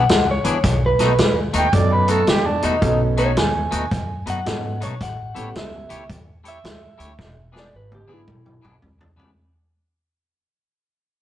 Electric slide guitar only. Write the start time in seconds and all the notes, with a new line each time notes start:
Already playing: F#5
0.31 C#5
0.86 B4
3.19 C#5
3.39 G#5
4.30 F#5
4.83 C#5
5.03 F#5
5.58 E5
6.48 E5
7.59 D5
7.76 B4
7.95 G4
8.13 E4